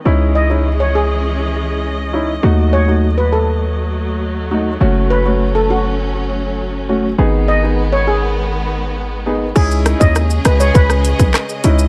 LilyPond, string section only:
\new Staff \with { instrumentName = "String section" } { \time 4/4 \key cis \minor \tempo 4 = 101 << { <e gis cis' dis''>1 | <fis a>1~ | <fis a>1 | <dis gis>1 |
<cis gis cis' dis''>1 | } \\ { gis'1 | r1 | cis'1 | b1 |
gis'1 | } >> }